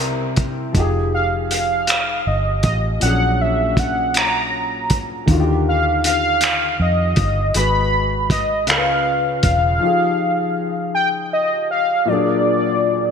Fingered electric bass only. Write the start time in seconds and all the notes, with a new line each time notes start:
Already playing: C2
0.38 E1
0.75 F1
2.27 G1
2.64 A1
3.03 A#1
4.91 D2
5.28 D#2
6.80 F2
7.18 G1
7.55 G#1
8.68 C#2
9.44 E1